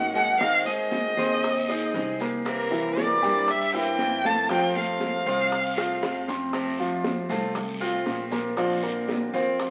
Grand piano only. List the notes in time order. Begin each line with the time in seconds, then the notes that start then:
0.15 G#3 G#4 G#5
0.40 D#3 D#4 D#5
0.66 G#3 G#4 G#5
1.18 C4 C5 C6
1.69 D#4 D#5 D#6
2.21 A#3 A#4 A#5
2.71 E3 E4 E5
3.22 G3 G4 G5
3.74 E4 E5 E6
4.25 A3 A4 A5
4.50 F3 F4 F5
4.76 A3 A4 A5
5.26 C4 C5 C6
5.78 F4 F5 F6
6.28 C4 C5 C6
6.79 F3 F4 F5
7.30 A3 A4 A5
7.80 F4 F5 F6
8.31 A#3 A#4 A#5
8.57 F3 F4 F5
8.83 A#3 A#4 A#5
9.34 C4 C5 C6